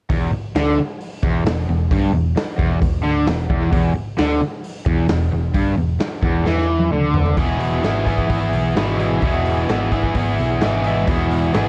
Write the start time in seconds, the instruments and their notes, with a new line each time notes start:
0.10 picked electric bass E1, overdriven electric guitar E2, kick, open hi-hat
0.33 muted overdriven electric guitar stroke, muted picked electric bass stroke
0.55 picked electric bass D2, overdriven electric guitar D3, snare, open hi-hat
0.79 muted overdriven electric guitar stroke, muted picked electric bass stroke
1.01 open hi-hat
1.23 picked electric bass E1, overdriven electric guitar E2, kick
1.46 picked electric bass E1, overdriven electric guitar E2, snare, open hi-hat
1.68 picked electric bass E1, overdriven electric guitar E2
1.91 picked electric bass G1, overdriven electric guitar G2, kick, open hi-hat
2.13 picked electric bass E1, overdriven electric guitar E2
2.36 muted overdriven electric guitar stroke, muted picked electric bass stroke, snare, open hi-hat
2.58 picked electric bass E1, overdriven electric guitar E2, kick
2.82 picked electric bass E1, overdriven electric guitar E2, kick, open hi-hat
3.03 picked electric bass D2, overdriven electric guitar D3
3.27 picked electric bass E1, overdriven electric guitar E2, snare, open hi-hat
3.50 picked electric bass E1, overdriven electric guitar E2, kick
3.72 picked electric bass E1, overdriven electric guitar E2, kick, open hi-hat
3.96 muted overdriven electric guitar stroke
4.18 picked electric bass D2, overdriven electric guitar D3, snare, open hi-hat
4.41 muted overdriven electric guitar stroke, muted picked electric bass stroke
4.64 open hi-hat
4.86 picked electric bass E1, overdriven electric guitar E2, kick
5.08 picked electric bass E1, overdriven electric guitar E2, snare, open hi-hat
5.32 picked electric bass E1, overdriven electric guitar E2
5.54 picked electric bass G1, overdriven electric guitar G2, kick, open hi-hat
5.77 picked electric bass E1, overdriven electric guitar E2
6.00 muted picked electric bass stroke, muted overdriven electric guitar stroke, snare, open hi-hat
6.23 picked electric bass E1, overdriven electric guitar E2, kick
6.46 picked electric bass E2, overdriven electric guitar E3, snare
6.58 snare
6.79 high tom
6.91 picked electric bass D2, overdriven electric guitar D3, mid tom
7.14 floor tom
7.26 floor tom
7.37 picked electric bass E1, overdriven electric guitar E2 B2 E3 B3 E4 G#4, kick, open hi-hat
7.60 open hi-hat
7.82 picked electric bass G#1, overdriven electric guitar E3 B3 E4 G#4, snare, open hi-hat
8.05 overdriven electric guitar E3 B3 E4 G#4, kick, open hi-hat
8.18 kick
8.28 picked electric bass G#1, overdriven electric guitar E3 B3 E4 G#4, kick, open hi-hat
8.53 picked electric bass B1, open hi-hat
8.75 picked electric bass G#1, overdriven electric guitar E2 B2 E3 B3 E4 G#4, snare, open hi-hat
8.99 overdriven electric guitar E3 B3 E4 G#4, open hi-hat
9.21 picked electric bass E1, overdriven electric guitar E2 B2 E3 B3 E4, kick, open hi-hat
9.26 overdriven electric guitar G#4
9.45 open hi-hat
9.68 picked electric bass G#1, overdriven electric guitar E3 B3 E4 G#4, snare, open hi-hat
9.92 overdriven electric guitar E3 B3 E4 G#4, kick, open hi-hat
10.03 kick
10.15 picked electric bass G#1, overdriven electric guitar E3 B3 E4, kick, open hi-hat
10.19 overdriven electric guitar G#4
10.38 picked electric bass B1, snare, open hi-hat
10.61 picked electric bass G#1, overdriven electric guitar E2 B2 E3 B3 E4, snare, open hi-hat
10.65 overdriven electric guitar G#4
10.84 overdriven electric guitar E3 B3 E4 G#4, open hi-hat
11.07 picked electric bass E1, overdriven electric guitar E2 B2 E3 B3 E4 G#4, kick, open hi-hat
11.31 open hi-hat
11.54 picked electric bass G#1, overdriven electric guitar E3 B3 E4 G#4, snare, open hi-hat